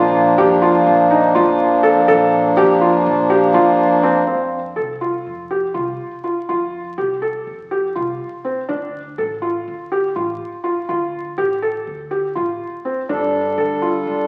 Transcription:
0.00 0.35 A#1 medium
0.00 4.25 F3 medium
0.00 4.25 A#3 medium
0.00 4.25 D4 medium
0.00 0.20 F4 medium
0.38 0.84 F2 medium
0.38 0.53 G4 medium
0.62 0.93 F4 medium
0.87 1.33 A#1 medium
1.10 1.26 D#4 medium
1.35 2.05 F2 medium
1.35 1.66 F4 medium
1.83 1.99 A4 medium
2.08 2.54 A#1 medium
2.08 2.39 A4 medium
2.57 3.04 F2 medium
2.57 2.72 G4 medium
2.81 3.12 F4 medium
3.07 3.52 A#1 medium
3.30 3.45 G4 medium
3.54 4.24 F2 medium
3.54 3.85 F4 medium
4.03 4.19 C4 medium
4.27 4.74 F2 medium
4.27 4.58 C4 medium
4.76 5.23 C2 medium
4.76 4.92 A4 soft
5.01 5.32 F4 soft
5.27 5.72 F2 medium
5.51 5.66 G4 soft
5.74 5.98 C2 medium
5.74 6.05 F4 soft
6.24 6.39 F4 soft
6.49 6.95 F2 medium
6.49 6.80 F4 medium
6.98 7.44 C2 medium
6.98 7.13 G4 medium
7.22 7.53 A4 medium
7.47 7.93 F2 medium
7.71 7.87 G4 medium
7.95 8.19 C2 medium
7.95 8.26 F4 soft
8.45 8.60 C4 soft
8.69 9.15 D2 medium
8.69 9.00 D4 medium
9.18 9.64 A1 medium
9.18 9.34 A4 medium
9.42 9.73 F4 medium
9.68 10.13 D2 medium
9.92 10.07 G4 medium
10.16 10.39 A1 medium
10.16 10.47 F4 medium
10.64 10.80 F4 medium
10.89 11.35 D2 medium
10.89 11.20 F4 medium
11.38 11.84 A1 medium
11.38 11.53 G4 medium
11.62 11.93 A4 medium
11.87 12.33 D2 medium
12.11 12.27 G4 soft
12.35 12.59 A1 medium
12.35 12.67 F4 medium
12.85 13.01 C4 soft
13.09 13.55 G1 medium
13.09 14.27 G3 medium
13.09 13.40 D4 medium
13.09 14.27 D4 soft
13.09 14.27 A4 medium
13.58 14.04 D2 medium
13.58 13.73 A4 medium
13.82 14.13 F4 medium
14.07 14.27 G1 medium

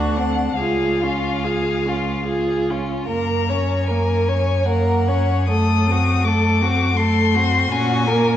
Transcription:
0.00 0.58 D2 soft
0.00 0.19 D4 soft
0.00 0.18 F#4 soft
0.00 0.58 F#5 medium
0.16 0.59 C4 soft
0.16 0.58 D4 soft
0.57 2.85 C#2 soft
0.57 1.03 G#4 soft
0.57 2.67 F5 medium
0.61 1.05 F4 soft
1.02 1.46 C#4 soft
1.02 1.45 F4 soft
1.43 1.87 F4 soft
1.43 1.90 G#4 soft
1.86 2.26 C#4 soft
1.86 2.25 F4 soft
2.26 2.72 F4 soft
2.26 2.71 G#4 soft
2.70 3.10 C#4 soft
2.70 3.07 F4 soft
3.07 7.67 F#2 soft
3.07 3.52 A#3 soft
3.07 3.51 A#4 soft
3.07 3.84 A#5 medium
3.49 3.92 C#4 soft
3.49 3.89 C#5 soft
3.87 4.30 A#3 soft
3.87 4.30 A#4 soft
3.87 4.67 G#5 medium
4.28 4.67 C#4 soft
4.28 4.67 C#5 soft
4.65 5.10 A#3 soft
4.65 5.09 A#4 soft
4.65 5.48 F#5 medium
5.08 5.49 C#4 soft
5.08 5.49 C#5 soft
5.49 5.88 A3 soft
5.49 5.93 A4 soft
5.49 6.26 D#6 medium
5.86 6.26 C4 soft
5.91 6.29 F#4 soft
6.24 6.63 A3 soft
6.24 6.64 A4 soft
6.24 6.98 D6 medium
6.61 6.96 C4 soft
6.61 6.98 F#4 soft
6.97 7.37 A3 soft
6.97 7.36 A4 soft
6.97 7.73 C6 medium
7.34 7.70 C4 soft
7.34 7.70 F#4 soft
7.70 8.37 A#2 medium
7.70 8.08 C#4 soft
7.70 8.09 F#4 medium
7.70 8.37 G#5 medium
8.07 8.37 A#3 soft
8.07 8.37 A#4 soft

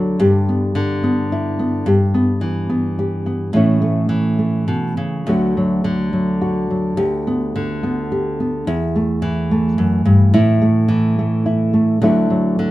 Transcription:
0.00 0.19 D2 medium
0.00 0.74 D3 medium
0.00 0.20 F#3 medium
0.00 0.16 F#4 medium
0.20 1.83 G2 medium
0.20 1.31 G4 medium
0.49 1.03 B3 medium
0.75 1.86 D3 medium
1.04 1.58 B3 medium
1.32 1.84 E4 medium
1.59 1.83 B3 medium
1.86 3.51 G2 medium
1.86 2.98 G4 medium
2.14 2.68 B3 medium
2.41 3.51 E3 medium
2.69 3.25 B3 medium
2.99 3.52 G4 medium
3.26 3.51 B3 medium
3.53 4.67 A2 medium
3.53 4.08 E3 medium
3.53 3.80 A3 medium
3.53 5.25 C#4 medium
3.53 5.26 E4 medium
3.82 4.37 A3 medium
4.09 5.23 E3 medium
4.39 5.24 A3 soft
4.68 4.97 B2 medium
4.97 5.27 C#3 medium
5.27 6.96 D2 medium
5.27 5.84 D3 medium
5.27 5.56 F#3 medium
5.27 6.99 A3 medium
5.27 6.40 F#4 medium
5.57 6.12 F#3 medium
5.84 7.54 D3 medium
6.13 6.69 F#3 medium
6.42 6.95 F#4 medium
6.70 6.99 F#3 medium
6.97 8.66 D2 medium
6.97 8.10 G4 medium
7.27 7.83 B3 medium
7.56 8.67 D3 medium
7.83 8.39 B3 medium
8.12 8.64 G4 medium
8.40 8.64 B3 medium
8.67 9.78 E2 medium
8.67 10.34 E4 medium
8.96 9.51 A3 medium
9.22 10.88 E3 medium
9.51 10.61 A3 medium
9.78 10.05 F#2 medium
10.05 10.33 G2 medium
10.34 12.04 A2 medium
10.34 11.45 E4 medium
10.62 11.18 A3 medium
10.88 12.00 E3 medium
11.19 11.73 A3 medium
11.46 12.00 E4 medium
11.73 12.02 A3 medium
12.02 12.71 D2 medium
12.02 12.58 D3 medium
12.02 12.29 F#3 medium
12.02 12.71 A3 medium
12.02 12.71 E4 medium
12.30 12.71 F#3 medium
12.59 12.71 D3 medium

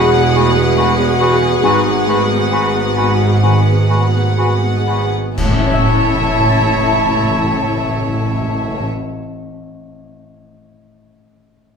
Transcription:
0.00 1.59 E1 loud
0.00 1.59 E2 loud
0.00 1.65 E2 loud
0.00 0.27 B2 medium
0.00 1.66 E3 loud
0.00 1.47 G#3 medium
0.00 2.06 G#3 medium
0.00 0.37 A3 medium
0.00 0.16 B3 medium
0.00 0.33 B3 medium
0.00 1.66 E4 medium
0.00 0.10 F#4 medium
0.00 0.77 F#4 medium
0.00 1.18 F#4 medium
0.00 4.94 F#4 medium
0.00 0.75 G#4 medium
0.00 1.42 G#4 medium
0.00 5.09 G#4 loud
0.00 0.10 B4 medium
0.00 5.10 B4 medium
0.00 5.09 F#5 medium
0.16 0.48 B3 medium
0.34 0.56 A3 medium
0.34 2.95 B3 medium
0.34 0.52 F#4 medium
0.34 0.52 B4 medium
0.34 0.45 G#5 medium
0.57 0.90 B3 medium
0.76 1.11 F#4 medium
0.76 0.94 F#4 medium
0.76 4.66 G#4 medium
0.76 0.93 B4 medium
0.76 0.87 G#5 medium
0.99 1.33 B3 medium
1.19 2.51 F#4 medium
1.19 1.54 F#4 medium
1.19 1.36 F#4 medium
1.19 1.37 B4 medium
1.19 1.30 G#5 medium
1.42 1.63 G#4 medium
1.63 5.09 G#1 medium
1.63 5.42 G#2 loud
1.63 3.39 G#2 loud
1.63 5.10 G#2 loud
1.63 4.95 B3 medium
1.63 1.81 F#4 medium
1.63 1.81 B4 medium
1.63 1.73 G#5 medium
1.85 2.20 B3 medium
2.06 3.88 G#3 medium
2.06 2.29 A3 medium
2.06 2.24 F#4 medium
2.06 2.25 B4 medium
2.06 2.17 G#5 medium
2.29 2.65 B3 medium
2.51 4.36 F#4 medium
2.51 2.88 F#4 medium
2.51 2.69 F#4 medium
2.51 2.68 B4 medium
2.51 2.62 G#5 medium
2.74 3.10 B3 medium
2.96 4.86 B3 medium
2.96 3.34 F#4 medium
2.96 3.14 F#4 medium
2.96 3.13 B4 medium
2.96 3.07 G#5 medium
3.21 3.57 G#4 medium
3.43 5.42 D#3 medium
3.43 3.80 D#3 medium
3.43 3.59 F#4 medium
3.43 3.59 B4 medium
3.43 3.54 G#5 medium
3.67 4.04 B3 medium
3.89 5.42 G#3 medium
3.89 4.13 A3 medium
3.89 4.06 F#4 medium
3.89 4.06 B4 medium
3.89 4.00 G#5 medium
4.13 4.52 B3 medium
4.37 5.42 F#4 medium
4.37 4.54 F#4 medium
4.37 4.78 F#4 medium
4.37 4.54 B4 medium
4.37 4.49 G#5 medium
4.63 5.03 B3 medium
4.87 5.42 B3 medium
4.87 5.29 F#4 medium
4.87 5.05 F#4 medium
4.87 5.04 B4 medium
4.87 4.99 G#5 medium
5.14 5.39 G#4 medium
5.37 8.84 A1 medium
5.37 9.28 A2 medium
5.37 5.45 A2 medium
5.37 8.85 A2 medium
5.37 8.86 C#4 medium
5.37 8.84 E4 medium
5.37 8.86 E4 medium
5.37 8.84 C#5 medium
5.37 8.85 C#5 medium
5.37 8.84 E5 medium
5.37 8.85 A5 medium
5.37 concert bass drum medium
5.37 crash medium
5.45 5.51 A2 medium
5.45 8.91 A3 medium
5.45 8.92 A3 medium
5.51 5.56 A2 medium
5.51 8.98 C#4 medium
5.51 8.99 C#4 medium
5.56 5.63 A2 medium
5.56 9.05 E4 medium
5.56 9.06 E4 medium
5.63 5.69 A2 medium
5.63 9.13 A4 medium
5.63 9.13 C#5 medium
5.69 5.75 A2 medium
5.69 9.19 E5 medium
5.74 5.81 A2 loud
5.74 9.20 E5 medium
5.81 5.87 A2 medium
5.87 5.94 A2 medium
5.94 6.00 A2 medium
6.00 6.07 A2 medium
6.07 6.13 A2 medium
6.14 6.21 A2 medium
6.21 6.27 A2 medium
6.27 6.33 A2 medium
6.33 6.40 A2 medium
6.40 6.46 A2 medium
6.46 6.53 A2 medium
6.53 6.59 A2 medium
6.59 6.66 A2 medium
6.66 6.72 A2 medium
6.72 6.78 A2 medium
6.78 6.84 A2 medium
6.84 6.91 A2 medium
6.91 6.97 A2 medium
6.97 7.04 A2 medium
7.04 7.10 A2 medium
7.10 7.17 A2 medium
7.17 7.24 A2 medium
7.24 7.31 A2 medium
7.31 7.37 A2 medium
7.37 7.44 A2 medium
7.44 7.50 A2 loud
7.51 7.57 A2 medium
7.57 7.63 A2 medium
7.63 7.70 A2 medium
7.70 7.76 A2 medium
7.76 7.83 A2 medium
7.83 7.89 A2 medium
7.89 7.95 A2 medium
7.95 8.01 A2 medium
8.02 8.08 A2 medium
8.08 8.14 A2 medium
8.14 8.21 A2 medium
8.21 8.27 A2 medium
8.27 8.34 A2 medium
8.34 8.41 A2 medium
8.41 8.48 A2 medium
8.48 8.54 A2 medium
8.54 8.61 A2 medium
8.61 8.67 A2 medium
8.67 8.74 A2 medium
8.74 8.80 A2 medium
8.80 8.86 A2 medium

